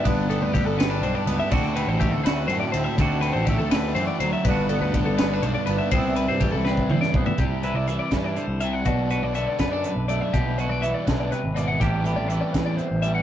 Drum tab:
CC |------------|x-----------|------------|------------|
RD |x-x-x-x-x-x-|--x-x-x-x-x-|x-x-x-x-x-x-|x-x-x-x-x-x-|
HH |------------|------------|------------|------------|
SD |------o-----|------o-----|------o-----|------o-----|
T2 |------------|------------|------------|------------|
FT |------------|------------|------------|------------|
BD |o---o-------|o---o-------|o---o-------|o---o-------|

CC |------------|------------|------------|------------|
RD |x-x-x-------|------------|------------|------------|
HH |------------|x-x-x-x-x-x-|x-x-x-x-x-x-|x-x-x-x-x-x-|
SD |------o--o--|------o-----|------o-----|------o-----|
T2 |--------o---|------------|------------|------------|
FT |-----------o|------------|------------|------------|
BD |o---o--o--o-|o-----o-----|o-----o-----|o-----o-----|

CC |------------|
RD |------------|
HH |x-x-x-x-x-x-|
SD |------o-----|
T2 |------------|
FT |------------|
BD |o-----o-----|